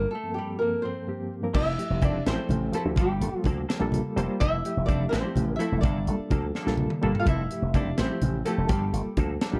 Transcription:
Already playing: G3 A#3 F4 A4 A#4
0.11 A4
0.15 A3
0.23 G2 F3 A#3 C4 A4
0.34 G4
0.38 G3
0.59 G2 F3 A#3 C4 A4 A#4
0.82 C4 C5
1.07 G2 F3 A#3 C4 G4
1.42 G2 F3 A#3 C4 A#4
1.54 F1 G3 C4 E4 A4 E5, kick, crash, high conga, low conga
1.78 F3 A3 E4 G4, closed hi-hat
1.90 F1, low conga
2.02 G3 C4 D4 E4 A4 D5, kick, closed hi-hat, high conga, low conga
2.26 A1 G3 C4 E4 A4 C5, snare, closed hi-hat
2.37 F3 A3 E4 A4
2.49 A1, closed hi-hat, high conga, low conga
2.73 F3 A3 C4 E4 G4 A4, closed hi-hat, low conga
2.85 D2
2.96 G1 F3 A#3 D4 G4 A4, kick, closed hi-hat, high conga, low conga
3.02 G3
3.20 G1 G3 A#3 F4 A4, closed hi-hat
3.33 muted slap bass stroke, low conga
3.44 D2 F3 A#3 D4 A4, kick, closed hi-hat, high conga, low conga
3.69 F3 A#3 D4 A4, snare, closed hi-hat
3.79 A#1 G3 A#3 F4 A4
3.92 closed hi-hat, high conga, low conga
4.16 F1 G3 A#3 D4 F4 A4 C5, closed hi-hat
4.40 F1 G3 C4 E4 A4 E5, kick, closed hi-hat, high conga, low conga
4.64 F3 A3 E4 G4, closed hi-hat
4.77 F1, low conga
4.86 G3 C4 D4 E4 A4 D5, kick, closed hi-hat, high conga, low conga
5.09 A1 C4 E4 A4 C5, snare, closed hi-hat
5.13 G3
5.24 F3 A3 E4 G4
5.36 A1, closed hi-hat, high conga, low conga
5.56 F3 E4 E5, low conga
5.60 A3 C4 E4 A4, closed hi-hat
5.72 F1
5.81 G1 F3 A#3 D4 A4 D5, kick, closed hi-hat, high conga, low conga
6.07 G1 G3 A#3 F4 A4, closed hi-hat
6.30 D2 F3 A#3 D4 A4, kick, closed hi-hat, high conga, low conga
6.42 low conga
6.54 F3 A#3 D4 A4, snare, low conga
6.65 A#1 G3 A#3 F4 A4, snare, low conga
6.77 high conga, low conga
6.90 mid tom
7.02 G1 G3 A#3 D4 F4 A4, mid tom
7.15 floor tom
7.20 F4 F5
7.26 F1 G3 C4 E4 A4 E5, kick, closed hi-hat, high conga, low conga
7.30 E4
7.49 F3 A3 E4 G4, closed hi-hat
7.62 F1, low conga
7.74 G3 C4 D4 E4 A4 D5, kick, closed hi-hat, high conga, low conga
7.97 A1 G3 C4 E4 A4 C5, snare, closed hi-hat
8.09 F3 A3 E4 G4
8.21 A1, closed hi-hat, high conga, low conga
8.45 F3 A3 C4 E4 G4 A4, closed hi-hat, low conga
8.58 F1
8.68 G1 F3 G3 A#3 D4 G4 A4, kick, closed hi-hat, high conga, low conga
8.92 G1 G3 A#3 F4 A4, closed hi-hat
9.05 muted slap bass stroke, low conga
9.17 D2 F3 A#3 D4 A4, kick, closed hi-hat, high conga, low conga
9.41 F3 A#3 D4 A4, snare, closed hi-hat
9.51 A#1 G3 A#3 F4 G4

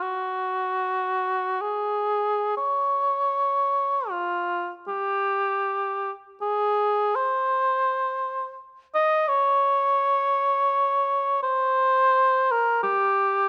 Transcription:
0.02 F#4
1.61 G#4
2.57 C#5
4.10 F4
4.88 G4
6.42 G#4
7.16 C5
8.95 D#5
9.28 C#5
11.43 C5
12.52 A#4
12.83 G4

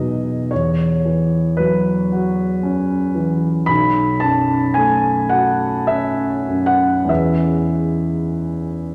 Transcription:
Already playing: E2 B2 F#3 D#4 G#4 D#5 E5
0.51 E2 C#5
1.05 E3
1.57 F#3 B4
2.12 F#4
2.63 C#4
3.15 E3
3.66 B1 B5
4.20 F#2 A5
4.74 A3 G#5
5.29 F#4 F#5
5.87 C#4 E5
6.47 F#2
6.66 F#5
7.04 E2 G#3 C#4 E4
7.09 B4 E5

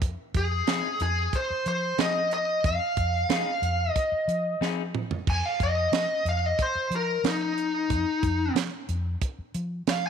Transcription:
0.01 F2, kick, closed hi-hat
0.34 F2 G#4, kick, closed hi-hat
0.67 F3 C4 D#4 G#4, snare, closed hi-hat
1.00 F2 G#4, closed hi-hat
1.33 C5, kick, closed hi-hat
1.50 muted fingered electric bass stroke
1.66 F3 C5, closed hi-hat
1.98 F3 C4 D#4 G#4 D#5, snare, closed hi-hat
2.31 D#5, closed hi-hat
2.64 F2 F5, kick, closed hi-hat
2.97 F2, kick, closed hi-hat
3.29 F3 C4 D#4 G#4, snare, closed hi-hat
3.62 F2, closed hi-hat
3.91 D#5
3.96 kick, closed hi-hat
4.12 muted fingered electric bass stroke
4.28 F3, closed hi-hat
4.61 F3 C4 D#4 G#4, snare
4.95 mid tom
5.11 floor tom
5.27 F2 G#5, kick, crash
5.46 F5
5.60 F2 D#5, kick, closed hi-hat
5.92 F3, snare, closed hi-hat
6.25 F2 F5, closed hi-hat
6.46 D#5
6.59 C5, kick, closed hi-hat
6.75 muted fingered electric bass stroke
6.90 F3, closed hi-hat
6.96 A#4
7.24 F3 D#4, snare, closed hi-hat
7.58 closed hi-hat
7.90 F2, kick, closed hi-hat
8.23 F2, kick, closed hi-hat
8.55 F3, snare, closed hi-hat
8.89 F2, closed hi-hat
9.21 kick, closed hi-hat
9.38 muted fingered electric bass stroke
9.54 F3, closed hi-hat
9.87 F3 F5, snare, closed hi-hat

